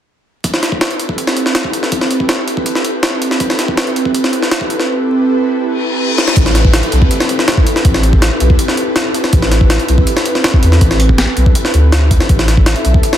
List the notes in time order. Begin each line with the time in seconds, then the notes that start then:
0.44 C4 E4 G4 A4 B4, kick, closed hi-hat
0.54 snare
0.63 snare, closed hi-hat
0.72 kick
0.81 snare, closed hi-hat
0.91 closed hi-hat
0.99 closed hi-hat
1.09 kick
1.18 closed hi-hat
1.27 snare
1.37 closed hi-hat
1.46 snare
1.55 snare, closed hi-hat
1.65 kick
1.73 closed hi-hat
1.83 snare
1.92 C4 E4 G4 A4 B4, kick, closed hi-hat
2.01 snare
2.11 closed hi-hat
2.20 kick
2.29 snare, closed hi-hat
2.48 closed hi-hat
2.57 kick
2.66 closed hi-hat
2.75 snare
2.85 closed hi-hat
3.03 snare, closed hi-hat
3.22 closed hi-hat
3.31 snare
3.40 C4 E4 G4 A4 B4, kick, closed hi-hat
3.50 snare
3.59 snare, closed hi-hat
3.68 kick
3.77 snare, closed hi-hat
3.87 closed hi-hat
3.96 closed hi-hat
4.05 kick
4.14 closed hi-hat
4.24 snare
4.33 closed hi-hat
4.43 snare
4.51 snare, closed hi-hat
4.61 kick
4.70 closed hi-hat
4.80 snare
4.88 C4 E4 G4 A4 B4
5.63 reverse cymbal
6.18 snare
6.28 snare
6.36 A1 C4 E4 G4 A4 B4, kick, closed hi-hat, downlifter
6.46 snare
6.55 snare, closed hi-hat
6.65 kick
6.74 snare, closed hi-hat
6.83 closed hi-hat
6.92 B1, closed hi-hat
7.02 kick
7.11 closed hi-hat
7.20 snare
7.29 closed hi-hat
7.39 snare
7.48 snare, closed hi-hat
7.57 kick
7.67 closed hi-hat
7.76 snare
7.85 A1 C4 E4 G4 A4 B4, kick, closed hi-hat
7.94 snare
8.03 closed hi-hat
8.13 kick
8.22 snare, closed hi-hat
8.40 B1, closed hi-hat
8.50 kick
8.59 closed hi-hat
8.68 snare
8.77 closed hi-hat
8.96 snare, closed hi-hat
9.14 closed hi-hat
9.24 snare
9.33 A1 C4 E4 G4 A4 B4, kick, closed hi-hat
9.42 snare
9.52 snare, closed hi-hat
9.61 kick
9.70 snare, closed hi-hat
9.80 closed hi-hat
9.88 B1, closed hi-hat
9.98 kick
10.07 closed hi-hat
10.17 snare
10.26 closed hi-hat
10.35 snare
10.44 snare, closed hi-hat
10.54 kick
10.63 E2, closed hi-hat
10.72 snare
10.81 A1 C4 E4 G4 A4 B4, kick, closed hi-hat
10.91 snare
11.00 closed hi-hat
11.09 kick
11.18 snare, closed hi-hat
11.37 B1, closed hi-hat
11.46 kick
11.55 closed hi-hat
11.65 snare
11.74 D2, closed hi-hat
11.92 snare, closed hi-hat
12.11 kick, closed hi-hat
12.20 snare
12.29 A1 D4 E4 A4 D5 E5, kick, closed hi-hat
12.39 snare
12.48 snare, closed hi-hat
12.57 kick
12.66 snare, closed hi-hat
12.76 closed hi-hat
12.85 B1, closed hi-hat
12.94 kick
13.03 closed hi-hat
13.13 snare